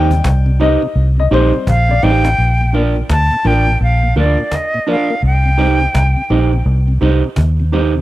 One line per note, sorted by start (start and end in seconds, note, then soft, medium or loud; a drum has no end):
0.00 0.20 D#2 loud
0.00 0.56 G3 medium
0.00 0.56 C4 medium
0.00 0.56 D#4 medium
0.00 0.63 G5 loud
0.11 0.16 C3 medium
0.11 cajon bass medium
0.24 0.76 C2 loud
0.24 cajon bass loud
0.24 cajon slap loud
0.46 0.52 C3 medium
0.60 0.69 G3 medium
0.60 0.69 C4 medium
0.60 0.80 D#4 medium
0.60 0.69 D#4 medium
0.60 0.81 G4 medium
0.60 0.81 C5 medium
0.60 0.81 D#5 medium
0.60 1.18 D#5 loud
0.82 0.88 C3 medium
0.82 cajon slap soft
0.96 1.27 C2 medium
0.96 cajon slap soft
1.18 1.23 C3 medium
1.18 1.24 D#5 medium
1.31 1.51 A#1 medium
1.31 1.63 G3 medium
1.31 1.40 G3 medium
1.31 1.63 C4 soft
1.31 1.40 C4 medium
1.31 1.52 D#4 medium
1.31 1.63 D#4 medium
1.31 1.40 D#4 medium
1.31 1.52 G4 loud
1.31 1.52 C5 medium
1.31 1.92 C5 loud
1.31 1.52 D#5 loud
1.31 cajon slap soft
1.54 1.59 C3 medium
1.54 cajon slap soft
1.67 1.99 A#1 loud
1.67 2.05 F5 loud
1.67 cajon bass loud
1.88 1.94 C3 medium
1.88 2.35 D5 medium
1.88 muted clean electric guitar stroke medium
2.03 2.34 A1 medium
2.03 2.11 G3 medium
2.03 2.11 C4 medium
2.03 2.23 D#4 medium
2.03 2.12 D#4 medium
2.03 2.23 G4 medium
2.03 2.24 C5 medium
2.03 2.24 D#5 loud
2.03 2.74 G5 loud
2.24 2.30 C4 medium
2.24 2.30 D#4 medium
2.24 cajon slap medium
2.38 3.01 A#1 medium
2.59 2.66 A#2 medium
2.59 cajon slap soft
2.72 2.83 F3 medium
2.72 2.83 A#3 medium
2.72 2.94 D4 medium
2.72 2.83 D4 medium
2.72 2.94 F4 medium
2.72 2.95 A#4 medium
2.72 2.95 D5 loud
2.72 cajon slap soft
2.96 3.01 A#2 medium
3.10 3.29 D2 medium
3.10 3.49 A5 loud
3.10 cajon bass loud
3.10 cajon slap loud
3.31 3.37 A#2 medium
3.31 cajon slap soft
3.44 3.76 A1 medium
3.44 3.54 F3 medium
3.44 3.54 A#3 medium
3.44 3.65 D4 medium
3.44 3.54 D4 medium
3.44 3.65 F4 medium
3.44 3.66 A#4 medium
3.44 3.66 D5 medium
3.44 3.82 G5 loud
3.44 cajon slap soft
3.67 3.72 A#2 medium
3.81 4.12 A#1 medium
3.81 4.15 F5 medium
3.81 cajon slap soft
4.03 4.08 A#2 medium
4.16 4.36 D2 medium
4.16 4.25 F3 medium
4.16 4.25 A#3 medium
4.16 4.37 D4 medium
4.16 4.25 D4 medium
4.16 4.37 F4 medium
4.16 4.37 A#4 loud
4.16 4.37 D5 medium
4.16 4.57 D5 medium
4.16 cajon slap soft
4.38 4.44 A#2 medium
4.38 cajon slap soft
4.51 4.89 D#5 medium
4.51 cajon bass loud
4.51 cajon slap medium
4.74 4.79 A#2 medium
4.74 cajon slap soft
4.87 4.96 F3 medium
4.87 4.97 A#3 medium
4.87 5.08 D4 medium
4.87 4.97 D4 medium
4.87 5.08 F4 medium
4.87 5.08 A#4 medium
4.87 5.08 D5 loud
4.87 cajon slap soft
4.91 5.22 F5 medium
5.10 5.15 A#3 medium
5.10 5.15 D4 medium
5.23 5.86 C2 loud
5.23 6.63 G5 medium
5.23 cajon slap soft
5.45 5.51 C3 medium
5.45 cajon slap soft
5.58 5.68 G3 medium
5.58 5.68 C4 medium
5.58 5.79 D#4 medium
5.58 5.68 D#4 medium
5.58 5.79 G4 medium
5.58 5.79 C5 medium
5.58 5.79 D#5 loud
5.58 cajon slap soft
5.81 5.86 C3 medium
5.95 6.14 C2 medium
5.95 cajon bass loud
5.95 cajon slap loud
6.17 6.22 C3 medium
6.17 cajon slap soft
6.30 6.62 A#1 medium
6.30 6.39 G3 medium
6.30 6.39 C4 medium
6.30 6.51 D#4 medium
6.30 6.39 D#4 medium
6.30 6.51 G4 medium
6.30 6.51 C5 medium
6.30 6.51 D#5 medium
6.30 cajon slap soft
6.53 6.58 C3 medium
6.53 cajon slap soft
6.66 6.97 C2 loud
6.66 cajon slap soft
6.88 6.93 C3 medium
7.01 7.21 C2 medium
7.01 7.10 G3 medium
7.01 7.10 C4 medium
7.01 7.22 D#4 medium
7.01 7.11 D#4 medium
7.01 7.22 G4 loud
7.01 7.22 C5 loud
7.01 7.22 D#5 loud
7.01 cajon slap soft
7.24 7.29 C3 medium
7.24 cajon slap soft
7.36 8.00 D#2 medium
7.36 cajon bass medium
7.36 cajon slap loud
7.59 7.65 C3 medium
7.59 cajon slap soft
7.72 7.82 G3 medium
7.72 7.82 C4 medium
7.72 7.93 D#4 medium
7.72 7.82 D#4 medium
7.72 7.93 G4 medium
7.72 7.93 C5 medium
7.72 7.94 D#5 loud
7.72 cajon slap soft
7.95 8.00 C3 medium